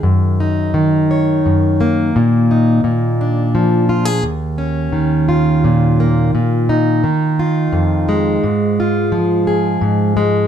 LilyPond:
\new Staff \with { instrumentName = "Steel-string acoustic guitar" } { \clef bass \time 3/4 \key ees \minor \tempo 4 = 86 << { r8 ees'4 des''4 bes8 | r8 ees'8 r8 d'4 f'16 aes'16 | r8 des'4 f'4 bes8 | r8 ees'4 f'4 aes8~ |
aes8 f'4 aes'4 aes8 | } \\ { <ges, ees>4 ees4 ges,4 | bes,4 bes,4 f4 | ees,4 ees4 bes,4 | bes,4 ees4 f,4 |
aes,4 f4 aes,4 | } >> }